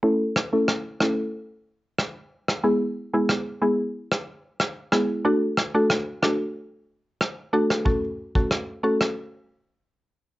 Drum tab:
SD |--r-r-r-----r--r|----r----r--r-r-|--r-r-r-----r--r|----r--r--------|
BD |----------------|----------------|----------------|o--o------------|